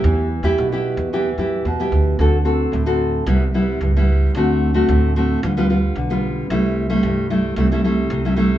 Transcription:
<<
  \new Staff \with { instrumentName = "Nylon-string guitar" } { \time 4/4 \key d \mixolydian \tempo 4 = 112 << { <b e' g'>8 r16 <b e' g'>8 <b e' g'>8. <b e' g'>16 r16 <b e' g'>8 r16 <b e' g'>8. | <c' fis' a'>16 r16 <c' fis' a'>8. <c' fis' a'>8. <g b e'>16 r16 <g b e'>8. <g b e'>8. | <a c' fis'>8. <a c' fis'>8. <a c' fis'>8 <g b f'>16 <g b f'>16 <g b f'>8 r16 <g b f'>8. | <g a e'>8. <g a e'>8. <g a e'>8 <g a e'>16 <g a e'>16 <g a e'>8. <g a e'>16 <g a e'>8 | } \\ { e4 b,4 e4 b,4 | d4 a,4 c4 g,4 | d4 a,4 d4 d4 | c4 g,4 c4 c4 | } >> }
  \new Staff \with { instrumentName = "Upright bass" } { \clef bass \time 4/4 \key d \mixolydian e,8. e,16 b,,8. e,8. fis,8 e,8 d,8 | d,4 d,4 c,4 cis,4 | d,4 d,4 d,4 b,,4 | c,4 c,4 c,4 c,4 | }
>>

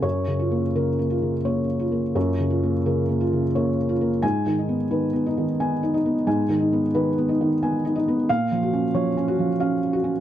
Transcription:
<<
  \new Staff \with { instrumentName = "Felt piano" } { \time 3/4 \key fis \major \tempo 4 = 88 << { cis''4 r2 | r2. | gis''4 r2 | r2. |
eis''4 r2 | } \\ { r8 eis'8 ais'8 eis'8 cis''8 eis'8 | cis''8 eis'8 ais'8 eis'8 cis''8 eis'8 | r8 dis'8 b'8 dis'8 gis''8 dis'8 | gis''8 dis'8 b'8 dis'8 gis''8 dis'8 |
r8 fis'8 cis''8 fis'8 eis''8 fis'8 | } >> }
  \new Staff \with { instrumentName = "Felt piano" } { \time 3/4 \key fis \major \tuplet 3/2 { fis,8 cis8 ais8 cis8 ais8 cis8 ais4 ais8 } | \tuplet 3/2 { fis,8 cis8 ais8 cis8 ais8 cis8 ais4 ais8 } | \tuplet 3/2 { gis,8 dis8 b8 dis8 b8 dis8 b8 dis'8 b8 } | \tuplet 3/2 { gis,8 dis8 b8 dis8 b8 dis8 b8 dis'8 b8 } |
\tuplet 3/2 { ais,8 eis8 cis'8 eis8 cis'8 eis8 cis'4 cis'8 } | }
>>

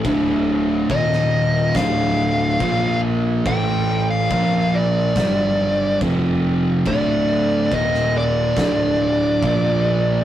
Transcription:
<<
  \new Staff \with { instrumentName = "Lead electric guitar" } { \time 4/4 \key d \minor \tempo 4 = 70 r4 ees''4 f''4. r8 | g''8. f''8. d''4. r4 | d''4 ees''8 d''2~ d''8 | }
  \new Staff \with { instrumentName = "Distorted electric guitar" } { \clef bass \time 4/4 \key d \minor <d, a, d>4 <ees, bes, ees>4 <d, a, d>4 <bes, f bes>4 | <a, e a>4 <bes, f bes>4 <g, d g>4 <f, c f>4 | <d, a, d>4 <ees, bes, ees>4 <d, a, d>4 <bes, f bes>4 | }
  \new Staff \with { instrumentName = "Fingered electric bass" } { \clef bass \time 4/4 \key d \minor d,,4 ees,,4 d,,4 bes,,4 | a,,4 bes,,4 g,,4 f,,4 | d,,4 ees,,4 d,,4 bes,,4 | }
  \new DrumStaff \with { instrumentName = "Drums" } \drummode { \time 4/4 <cymc bd>4 <cymc bd>16 sn8. <cymc bd sn>4 <cymc bd>4 | <cymc bd>4 <cymc bd>4 <cymc bd sn>4 <cymc bd>4 | <cymc bd>4 <cymc bd>16 sn8. <cymc bd sn>4 <cymc bd>4 | }
>>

